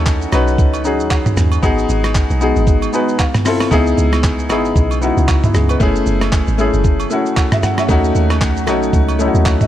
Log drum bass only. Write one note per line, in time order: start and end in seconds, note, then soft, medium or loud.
0.00 0.26 D#2 loud
0.33 0.60 B1 medium
0.58 1.01 C#2 medium
1.00 1.33 D#2 medium
1.37 1.60 D#2 loud
1.63 1.86 G#1 loud
1.89 2.25 G#1 loud
2.30 2.53 B1 loud
2.56 2.89 G#1 medium
3.72 3.95 C#2 loud
3.98 4.51 C#2 loud
4.50 4.73 G#1 medium
4.76 5.12 B1 loud
5.17 5.50 C#2 medium
5.54 5.77 C#2 medium
5.80 6.03 F#1 loud
6.06 6.43 F#1 loud
6.48 6.71 G#1 loud
6.74 7.06 F#1 medium
7.89 8.12 D#2 loud
8.15 8.69 D#2 loud
8.67 8.90 B1 loud
8.93 9.30 C#2 loud
9.34 9.67 D#2 loud